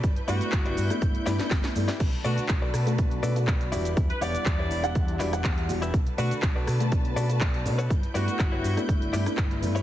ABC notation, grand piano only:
X:1
M:4/4
L:1/16
Q:1/4=122
K:Bm
V:1 name="Grand piano"
z2 [A,B,DE]4- [A,B,DE] [A,B,DE]3 [A,B,DE] [A,B,DE]3 [A,B,DE] z | z2 [A,DF]4- [A,DF] [A,DF]3 [A,CDF] [A,DF]3 [G,B,DF] z | z2 [G,B,Df]4- [G,B,Df] [G,B,Df]3 [G,B,DF] [G,B,Df]3 [G,B,DF] z | z2 [A,DF]4- [A,DF] [A,DF]3 [A,CDF] [A,DF]3 [A,CDF] z |
z2 [A,B,DE]4- [A,B,DE] [A,B,DE]3 [A,B,DE] [A,B,DE]3 [A,B,DE] z |]